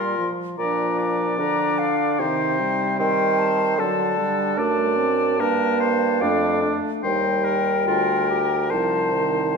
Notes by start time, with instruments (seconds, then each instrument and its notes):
Already playing: bassoon A#2, french horn G3, clarinet F4, oboe A#4, flute C6
0.18 french horn F3
0.57 bassoon A#2, french horn F3, clarinet D4, oboe D5, flute A#5
0.99 oboe D5
1.38 bassoon D3, clarinet D4, flute A#5
1.78 flute F5
2.19 bassoon C3, french horn D#3, clarinet D#4, oboe C5, flute G5
2.60 french horn G3
2.99 bassoon D#3, clarinet C4, oboe C5, flute G5
3.39 flute A5
3.77 bassoon D3, french horn F#3, clarinet D4, oboe A4, flute A5
4.17 french horn G3
4.58 bassoon F#2, french horn A3, oboe D5, flute A5
4.98 french horn C4
5.39 bassoon G2, french horn A#3, clarinet D4, oboe A#4
5.80 oboe C5
6.20 bassoon F2, french horn A3, clarinet D4, oboe D5, flute F5
6.62 clarinet D4
7.03 bassoon D#2, french horn G3, clarinet D#4, oboe C5, flute G5
7.45 oboe A#4
7.87 bassoon D2, clarinet F4, oboe A#4
8.30 clarinet G4
8.70 bassoon C2, french horn F3, clarinet D#4, oboe C5, flute A5
9.13 french horn D#3